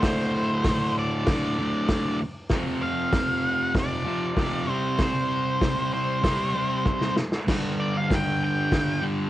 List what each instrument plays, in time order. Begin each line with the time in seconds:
Already playing: distorted electric guitar D2 A2 D3
0.03 lead electric guitar C5, kick, snare, open hi-hat
0.64 kick, snare, open hi-hat
0.99 lead electric guitar D5
1.26 distorted electric guitar D2 A2 D3, kick, snare, open hi-hat
1.58 distorted electric guitar D2 A2 D3
1.88 kick, snare, open hi-hat
2.49 distorted electric guitar F2 C3, kick, snare, open hi-hat
2.54 distorted electric guitar F3
2.83 lead electric guitar F5
3.13 kick, snare, open hi-hat
3.75 kick, snare, open hi-hat
3.79 lead electric guitar D5
4.05 distorted electric guitar F2 C3 F3
4.35 distorted electric guitar F2 C3 F3, kick, snare, open hi-hat
4.67 distorted electric guitar C3 G3 C4, lead electric guitar C5
4.99 lead electric guitar C5, kick, snare, open hi-hat
5.61 kick, snare, open hi-hat
5.94 lead electric guitar C5
6.23 distorted electric guitar C3 G3 C4, kick, snare, open hi-hat
6.55 distorted electric guitar C3 G3 C4
6.85 kick, snare
7.01 snare
7.16 snare
7.32 snare
7.48 distorted electric guitar G2 D3 G3, kick, snare, crash
7.80 lead electric guitar D5
7.97 lead electric guitar F5
8.10 kick, snare, open hi-hat
8.15 lead electric guitar G5
8.44 lead electric guitar G5
8.72 kick, snare, open hi-hat
9.02 distorted electric guitar G2 D3 G3